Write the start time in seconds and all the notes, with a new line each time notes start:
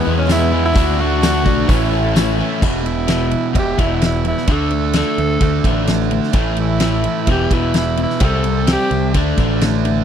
Already playing: E2 B2 E3 G#3 B3 E4 G#4
0.05 E2 E3 G#3 B3 E4
0.17 B3 C#4
0.25 E2 B2 E3 B3 E4, snare, open hi-hat
0.30 G#3 B3 E4, tambourine
0.52 E2 B2 E3 G#3 B3 E4
0.65 E4
0.74 D2 D3 A3 D4 F#4 A4, kick, open hi-hat
0.78 F#4
0.98 A3 D4 F#4
1.22 D3 A3 D4 F#4, snare, open hi-hat, tambourine
1.44 B1 A3 D4 F#4, kick
1.48 A3
1.67 A1 A2 E3 A3 C#4 E4 A4, kick, open hi-hat
1.90 A3 C#4 E4
2.13 A2 E3 A3 C#4, snare, open hi-hat, tambourine
2.17 E4
2.37 A3 C#4 E4
2.61 E1 E2 B2 E3, kick, crash
2.83 E2 B2 E4, ride
3.08 E2 B2 E3, snare, ride
3.31 E2 B2, ride
3.53 E1 E2 B2 E3, kick, ride
3.59 G4
3.78 E1 E2 B2 E3 E4, kick, ride
4.01 E2 B2 E4, snare, ride
4.25 E2 B2 E4, ride
4.37 snare
4.47 D2 D3 A3 D4, kick, ride
4.52 A4
4.71 D3 A3, ride
4.93 D3 A3 D4 A4, snare, ride
5.18 D2 D3 A3, ride
5.40 D2 D3 A3 D4, kick, ride
5.64 A1 D3 A3 D4, kick, ride
5.87 D3 A3, snare, ride
6.11 D3 A3, ride
6.24 snare
6.33 A1 A2 E3 A3, kick, ride
6.56 A2 E3 E4, ride
6.80 A2 E3 A3, snare, ride
7.04 A2 E3, ride
7.27 E1 E2 B2 E3, kick, ride
7.31 G4
7.51 E1 E2 B2 E3 E4, kick, ride
7.73 E2 B2, snare, ride
7.78 E4
7.97 E2 B2, ride
8.03 E4
8.10 snare
8.20 C2 C3 G3 C4, kick, ride
8.25 A4
8.43 C3 G3, ride
8.67 C3 G3 C4, snare, ride
8.73 G4
8.91 C2 C3 G3, ride
9.14 D2 D3 A3 D4, kick, ride
9.37 A1 D3 A3 D4, kick, ride
9.61 D3 A3, snare, ride
9.85 D3 A3, ride